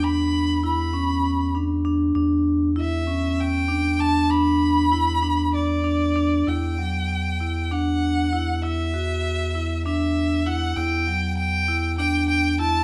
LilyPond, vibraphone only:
\new Staff \with { instrumentName = "Vibraphone" } { \time 7/8 \key e \dorian \tempo 4 = 98 d'4 e'8 cis'4 d'8 d'8 | d'4 e'8 cis'4 d'8 d'8 | d'4 e'8 d'4 d'8 d'8 | e'8 fis4 e'8 d'4 e'8 |
e'8 fis'4 e'8 d'4 e'8 | e'8 fis4 e'8 d'4 e'8 | }